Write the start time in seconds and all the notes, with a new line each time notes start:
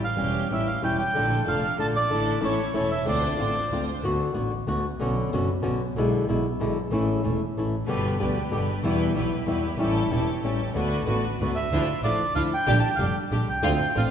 Already playing: A1 A3 C#4 G4
0.04 F5
0.16 E1 E3 G3 A3 C#4
0.20 G4
0.51 A1 E3 G3 A3 C#4 E4 G4 E5
0.67 F5
0.82 E1 E3 G3 A3 C#4 E4 G4 G5
0.98 G5
1.14 A#1 D3 A3 D4 F4 A4
1.46 F1 D3 A3 A#3 D4 F4 A4 F5
1.77 A#1 D3 A3 A#3 D4 F4 A4 A5
1.96 D5
2.09 A1 D3 A3 D4 E4 A4
2.40 A1 E3 A3 C#4 E4 A4
2.45 C#5
2.73 E1 E3 A3 C#4 E4 A4 C#5
2.91 E5
3.05 D2 D3 A3 C4 D4 F4 C5 D5
3.37 A1 D3 A3 C4 D4 F4 C5
3.70 D2 D3 A3 C4 D4 F4 C5
4.03 D2 D3 A3 B3 F#4
4.33 A1 D3 A3 B3 F#4
4.67 D2 D3 A3 B3 F#4
4.99 B1 B2 D3 B3 C#4 F#4
5.31 F#1 B2 D3 B3 C#4 F#4
5.62 B1 B2 D3 B3 C#4 F#4
5.94 B1 B2 D3 G#3 B3 E4
6.28 B1 B2 D3 G#3 B3 E4
6.60 B1 B2 D3 G#3 B3 E4
6.91 A1 E3 A3 C#4 E4
7.23 E1 E3 A3 C#4 E4
7.56 A1 E3 A3 C#4 E4
7.87 G1 B2 D3 G3 B3 D4 G4 B4
8.19 D2 B2 D3 G3 B3 D4 G4 B4
8.50 G1 B2 D3 G3 B3 D4 G4 B4
8.83 E2 B2 E3 G3 B3 E4 G4 B4
9.15 B1 B2 E3 G3 B3 E4 G4 B4
9.46 E2 B2 E3 G3 B3 E4 G4 B4
9.77 A1 E3 G3 C#4 E4 G4 A4
10.10 E1 E3 G3 C#4 E4 G4 A4
10.42 A1 E3 G3 C#4 E4 G4 A4
10.74 D2 D3 A3 B3 D4 F#4 B4
11.05 A1 D3 A3 B3 D4 F#4 B4
11.37 D2 D4 F#4 B4
11.42 D3 A3 B3 F#4
11.55 E5
11.70 D2 D3 F3 A3 D4 E4 F4
12.02 A1 D3 F3 A3 D4 E4 F4 D5
12.35 D2 D3 F3 A3 D4 E4 F4 F5
12.54 G5
12.67 A#1 D3 G3 A#3 D4 G4
12.80 A5
12.90 G5
12.96 D3 G3 D4 G4 F5
13.00 F1 A#3 G4
13.06 G5
13.31 A#1 D3 G3 A#3 D4 G4
13.49 C2 G5
13.62 D2 D3 A3 C4 D4 F4
13.95 A1 D3 A3 C4 D4 F4 F5